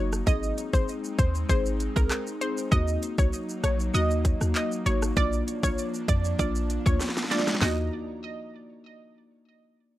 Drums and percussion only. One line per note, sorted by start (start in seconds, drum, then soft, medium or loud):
0.13 cross-stick medium
0.13 shaker medium
0.27 kick loud
0.27 shaker medium
0.43 shaker medium
0.58 closed hi-hat medium
0.58 shaker medium
0.73 kick loud
0.73 shaker medium
0.88 shaker medium
1.04 shaker medium
1.19 kick loud
1.19 closed hi-hat medium
1.19 shaker medium
1.35 shaker medium
1.49 kick medium
1.49 shaker medium
1.66 shaker medium
1.80 closed hi-hat medium
1.80 shaker soft
1.96 kick medium
1.96 shaker medium
2.11 cross-stick medium
2.11 clap medium
2.11 shaker medium
2.27 shaker medium
2.41 closed hi-hat medium
2.41 shaker soft
2.58 shaker medium
2.72 kick loud
2.72 shaker medium
2.88 shaker medium
3.03 closed hi-hat medium
3.03 shaker medium
3.18 kick loud
3.18 shaker medium
3.33 shaker medium
3.49 shaker medium
3.64 cross-stick medium
3.64 closed hi-hat medium
3.64 shaker medium
3.80 shaker medium
3.94 shaker medium
4.11 shaker medium
4.25 kick medium
4.25 closed hi-hat medium
4.25 shaker soft
4.41 cross-stick medium
4.41 shaker medium
4.55 clap medium
4.55 shaker medium
4.72 shaker medium
4.86 closed hi-hat medium
4.86 shaker soft
5.02 cross-stick medium
5.02 shaker medium
5.17 kick loud
5.17 shaker medium
5.33 shaker medium
5.48 closed hi-hat medium
5.48 shaker medium
5.63 kick loud
5.63 shaker medium
5.78 shaker medium
5.94 shaker medium
6.08 kick loud
6.08 closed hi-hat medium
6.08 shaker medium
6.25 shaker medium
6.39 kick medium
6.39 shaker medium
6.55 shaker medium
6.70 closed hi-hat medium
6.70 shaker soft
6.86 kick medium
6.86 shaker medium
7.00 snare medium
7.00 shaker medium
7.09 snare medium
7.17 snare medium
7.17 shaker medium
7.24 snare medium
7.31 snare medium
7.31 closed hi-hat medium
7.31 shaker medium
7.39 snare medium
7.47 snare loud
7.47 shaker medium
7.55 snare medium
7.62 snare loud
7.62 clap medium
7.62 floor tom loud